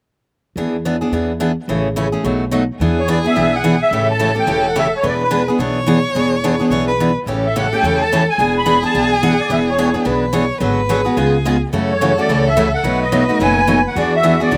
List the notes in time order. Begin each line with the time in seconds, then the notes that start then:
0.56 E2 E3 B3 D4 G#4
0.85 E3 B3 D4 G#4
1.01 B3 D4 G#4
1.12 E2 E3 B3 D4 G#4
1.40 E3 B3 D4 G#4
1.68 A1 C#3 E3 A3 C#4 G#4
1.96 C#3 E3 A3 C#4 G#4
2.12 A3 C#4 G#4
2.24 B1 B2 F#3 A3 D#4 F#4
2.51 B2 F#3 A3 D#4 F#4
2.80 E2 E3 B3 D4 G#4
2.99 C#5
3.08 E3 B3 D4 G#4 D5
3.24 B3 D4 G#4 E5
3.36 B1 E3 B3 D4 G#4
3.55 F#5
3.64 E3 B3 D4 G#4
3.82 E5
3.91 A1 C#3 E3 A3 C#4 G4 A4
4.11 A5
4.19 C#3 E3 A3 C#4 G4
4.35 A3 C#4 G4
4.39 G5
4.47 E1 C#3 E3 A3 C#4 G4
4.67 F#5
4.76 C#3 E3 A3 C#4 G4 E5
4.96 C#5
5.03 E1 E3 B3 D4 G#4 B4
5.08 D5
5.23 B4
5.31 E3 B3 D4 G#4
5.48 B3 D4 G#4
5.59 B1 E3 B3 D4 G#4 C#5
5.86 E3 B3 D4 G#4
6.15 E1 E3 B3 D4 G#4
6.44 E3 B3 D4 G#4
6.60 B3 D4 G#4
6.70 B1 E3 B3 D4 G#4 C#5
6.88 B4
7.00 E3 B3 D4 G#4
7.26 A1 C#3 E3 A3 C#4 G4 A4
7.46 E5
7.56 C#3 E3 A3 C#4 G4 F#5
7.73 A3 C#4 G4 G5
7.83 E2 C#3 E3 A3 C#4 G4
8.02 A5
8.12 C#3 E3 A3 C#4 G4
8.30 G#5
8.38 E1 E3 B3 D4 G#4
8.58 B5
8.66 E3 B3 D4 G#4
8.83 B3 D4 G#4 A5
8.94 B1 E3 B3 D4 G#4
9.12 G#5
9.23 E3 B3 D4 G#4 F#5
9.40 D5
9.49 E1 E3 B3 D4 G#4 E5
9.69 C#5
9.78 E3 B3 D4 G#4
9.94 B3 D4 G#4
10.05 B1 E3 B3 D4 G#4 B4
10.33 E3 B3 D4 G#4 C#5
10.60 G#1 D3 F#3 B3 F#4 G#4 B4
10.89 D3 F#3 B3 F#4 G#4
11.05 B3 F#4 G#4
11.17 C#2 C#3 G#3 B3 F4 G#4
11.45 C#3 G#3 B3 F4 G#4
11.73 F#2 C#3 E3 A3 C#4 F#4 A4
11.92 C#5
12.01 C#3 E3 A3 C#4 F#4
12.18 A3 C#4 F#4 D5
12.29 C#2 C#3 E3 A3 C#4 F#4
12.47 E5
12.57 C#3 E3 A3 C#4 F#4
12.74 F#5
12.83 B1 B2 F#3 A3 D#4 F#4 B4
13.03 D#5
13.12 B2 F#3 A3 D#4 F#4
13.29 A3 D#4 F#4
13.40 F#1 B2 F#3 A3 D#4 F#4 G#5
13.67 B2 F#3 A3 D#4 F#4
13.87 F#5
13.96 E2 E3 B3 D4 F#4 G#4 D5
14.16 E5
14.23 E3 B3 D4 G#4
14.40 B3 D4 G#4 D5
14.51 B1 E3 B3 D4 G#4